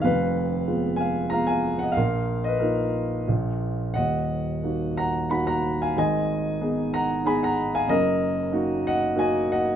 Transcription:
X:1
M:3/4
L:1/16
Q:1/4=93
K:Ebm
V:1 name="Grand piano"
[cf]6 [fa]2 [fb] [fa]2 [eg] | [Bf]3 [ce] B6 z2 | [eg]6 [gb]2 [gc'] [gb]2 [fa] | [ea]6 [gb]2 [ac'] [gb]2 [fa] |
[Be]6 [eg]2 [ea]2 [eg]2 |]
V:2 name="Grand piano"
[F,,,F,,]4 [A,CF]4 [A,CF]4 | [B,,,B,,]4 [B,EF]4 [B,,,B,,]4 | [E,,,E,,]4 [B,EG]4 [B,EG]4 | [A,,,A,,]4 [CEA]4 [CEA]4 |
[G,,,G,,]4 [B,EG]4 [B,EG]4 |]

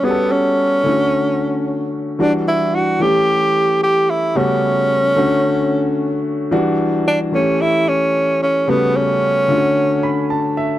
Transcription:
X:1
M:4/4
L:1/8
Q:"Swing 16ths" 1/4=111
K:Amix
V:1 name="Tenor saxophone"
B, C6 z | D E F G3 G E | C6- C z | z2 D C E C2 C |
B, C6 z |]
V:2 name="Grand piano"
z8 | z8 | z8 | z8 |
z4 z b a e |]
V:3 name="Grand piano"
[G,B,CF^GA]3 [D,A,CEF]4- [D,A,CEF] | [E,G,DF]3 [E,A,CG]4- [E,A,CG] | [C,G,A,B,F]3 [D,A,CF]4- [D,A,CF] | [E,G,DF]3 [E,A,CG]4- [E,A,CG] |
[C,G,A,B,F]3 [D,A,C=F^F]4- [D,A,C=F^F] |]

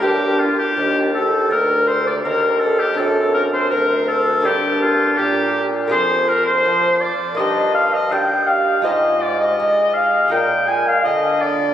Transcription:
X:1
M:4/4
L:1/16
Q:1/4=82
K:Gm
V:1 name="Flute"
G2 F G3 A2 B2 c d B2 A G | A2 B c B2 A2 G2 F2 G3 z | [K:Bbmix] c2 B c3 d2 e2 f e g2 f2 | e2 d e3 f2 g2 a f e2 d2 |]
V:2 name="Oboe"
G2 F G3 A2 B2 c d B2 A G | A2 B c B2 A2 G2 F2 G3 z | [K:Bbmix] c2 B c3 d2 e2 f e g2 f2 | e2 d e3 f2 g2 a f e2 d2 |]
V:3 name="Lute"
[B,DG]16 | [CD]8 [B,DG]8 | [K:Bbmix] [B,FA]8 [B,EG]8 | [A,Fc]8 [A,FB]8 |]
V:4 name="Lute" clef=bass
G,,2 z2 E,,4 D,,4 E,,4 | ^F,,4 D,,4 G,,4 B,,4 | [K:Bbmix] F,,4 F,2 z2 G,,4 G,4 | A,,4 A,4 B,,4 D,4 |]
V:5 name="Bassoon" clef=bass
G,,2 z2 E,,4 D,,4 E,,4 | ^F,,4 D,,4 G,,4 B,,4 | [K:Bbmix] F,,4 F,2 z2 G,,4 G,4 | A,,4 A,4 B,,4 D,4 |]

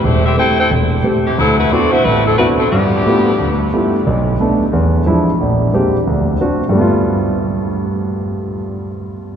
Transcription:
X:1
M:4/4
L:1/8
Q:"Swing" 1/4=179
K:Gmix
V:1 name="Saxophone section"
[A,EGc] [CGAe] [EAcg] [EAcg] z3 [E,A,CG] | [^F,CEA] [A,E^FB] [CFAd] [A,EFc] [A,EFB] [F,CEA] [A,EFB] [F,CEA] | [F,B,DG]6 z2 | z8 |
z8 | z8 | z8 |]
V:2 name="Grand piano"
E,,,2 [A,CG] z E,,,2 [A,CG] z | D,,2 [B,CDE^F] z A,,,2 [B,CDEF] z | G,,2 [A,B,EFG] z D,,2 [A,B,EFG] z | B,,,2 [A,B,D] z E,,2 [F,^G,DE] z |
_B,,,2 [_A,_B,CDG] z D,,2 [CD^F] z | [G,,G,A,B,F]8- | [G,,G,A,B,F]8 |]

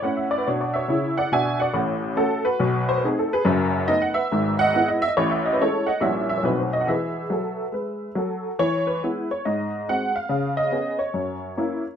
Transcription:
X:1
M:4/4
L:1/16
Q:"Swing" 1/4=140
K:A
V:1 name="Honky-tonk piano"
f e d B c d [ce]4 [df]2 [eg]2 [df]2 | [K:E] z4 [FA]2 [FB]4 =c B G A [GB]2 | z4 d f [Be]4 [df]3 d e d | c e d B [Ac]2 [df]2 [ce]2 e c B =c d f |
[Be]12 z4 | c2 B4 c2 d4 f2 =f2- | =f2 d4 c8 z2 |]
V:2 name="Honky-tonk piano"
[A,,C]4 [B,,D]4 [C,E]4 [B,,D]4 | [K:E] [A,,,A,,]4 [A,C]4 [B,,,B,,]4 [A,=CD]4 | [F,,,F,,]4 [A,B,D]4 [G,,,G,,]4 [G,B,E]4 | [A,,,A,,]4 [G,CE]4 [^A,,,^A,,=G,CE]4 [B,,,B,,=A,=CD]4 |
[E,G]4 [F,A]4 [G,B]4 [F,A]4 | E,4 [G,B,E]4 G,,4 [G,^B,F]4 | C,4 [B,CG]4 F,,4 [^A,CE]4 |]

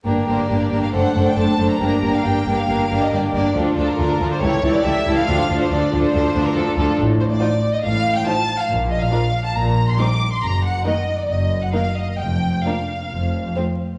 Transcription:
X:1
M:4/4
L:1/16
Q:1/4=138
K:Gm
V:1 name="Violin section"
z2 c d4 f ^f3 g a3 b- | b3 f g3 f4 e d2 d2 | z2 A B4 c ^c3 d =e3 f- | f3 c d3 c4 B A2 A2 |
[K:Eblyd] z2 c d4 e f3 g a3 f | z2 e f4 a b3 c' d'3 c' | b2 _g2 e3 d e3 g f2 e2 | g4 f8 z4 |]
V:2 name="Violin section"
[GB]2 [GB]2 [GB]2 [GB]2 [Ac]2 [Ac]2 [Ac]2 [Ac]2 | [GB]2 [GB]2 [GB]2 [GB]2 [GB]2 [GB]2 [GB]2 [GB]2 | [FA]2 [FA]2 [FA]2 [FA]2 [GA]2 [GA]2 [GA]2 [GA]2 | [FA]2 [FA]2 [FA]2 [FA]2 [FA]2 [FA]2 [FA]2 [FA]2 |
[K:Eblyd] z4 [Fc]4 z4 [Fc]4 | z4 [FB]4 z4 [EB]4 | z4 [EB]4 z4 [EB]4 | z4 [DB]4 z4 [Cc]4 |]
V:3 name="Viola section"
[B,D]2 [B,D]2 [B,D]2 [B,D]2 [A,D]2 [A,D]2 [A,D]2 [A,D]2 | [B,D]2 [B,D]2 [B,D]2 [B,D]2 [B,D]2 [B,D]2 [B,D]2 [B,D]2 | [F,D]2 [F,D]2 [F,D]2 [F,D]2 [=E,=E]2 [E,E]2 [E,E]2 [E,E]2 | [F,D]2 [F,D]2 [F,D]2 [F,D]2 [F,D]2 [F,D]2 [F,D]2 [F,D]2 |
[K:Eblyd] z4 [F,E]4 z4 [F,E]4 | z4 [F,D]4 z4 [G,C]4 | z4 [E,B,]4 z4 [E,B,]4 | z4 [F,B,]4 z4 [F,A,]4 |]
V:4 name="Cello section" clef=bass
G,,2 G,,2 G,,2 G,,2 ^F,,2 F,,2 F,,2 F,,2 | G,,2 G,,2 G,,2 G,,2 G,,2 G,,2 G,,2 G,,2 | D,,2 D,,2 D,,2 D,,2 ^C,,2 C,,2 C,,2 C,,2 | D,,2 D,,2 D,,2 D,,2 D,,2 D,,2 D,,2 D,,2 |
[K:Eblyd] A,,4 z4 A,,4 z4 | B,,4 z4 B,,4 z4 | _G,,4 z4 G,,4 z4 | F,,4 z4 F,,4 z4 |]
V:5 name="Double bass section" clef=bass
G,,,2 G,,,2 G,,,2 G,,,2 ^F,,,2 F,,,2 F,,,2 F,,,2 | G,,,2 G,,,2 G,,,2 G,,,2 G,,,2 G,,,2 G,,,2 G,,,2 | D,,2 D,,2 D,,2 D,,2 ^C,,2 C,,2 C,,2 C,,2 | D,,2 D,,2 D,,2 D,,2 D,,2 D,,2 D,,2 D,,2 |
[K:Eblyd] A,,,4 z4 A,,,4 z4 | B,,,4 z4 B,,,4 z4 | _G,,,4 z4 G,,,4 z4 | F,,,4 z4 F,,,4 z4 |]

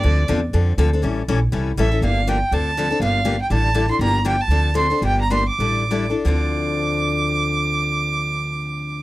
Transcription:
X:1
M:4/4
L:1/8
Q:"Swing" 1/4=243
K:Dm
V:1 name="Violin"
d2 z6 | z6 e2 | f2 g2 a4 | f3 g a3 c' |
b2 g a3 c'2 | g b c' d'4 z | d'8- | d'8 |]
V:2 name="Steel-string acoustic guitar"
[D,F,CDA] z [D,F,CDA] z [D,F,CDA] z [D,F,CDA] [CDA] | [E,G,^CEA] z [E,G,CEA] z [E,G,CEA] z [E,G,CEA] [CEA] | [D,F,B,DG] z [D,F,B,DG] z [D,F,CDA] z [D,F,CDA] [CDA] | [D,F,B,DG] z [D,F,B,DG] z [D,G,DEA] z [D,G,DEA] [DEA] |
[D,F,B,DG] z [D,F,B,DG] z [D,F,CDA] z [D,F,CDA] [CDA] | [D,F,B,DG] z [D,F,B,DG] z [D,G,DEA] z [D,G,DEA] [DEA] | [D,F,CDA]8- | [D,F,CDA]8 |]
V:3 name="Upright bass" clef=bass
D,,2 E,,2 F,,2 D,,2 | A,,,2 B,,,2 ^B,,,2 A,,,2 | G,,,4 D,,4 | G,,,4 A,,,4 |
G,,,4 D,,4 | G,,,4 A,,,4 | D,,8- | D,,8 |]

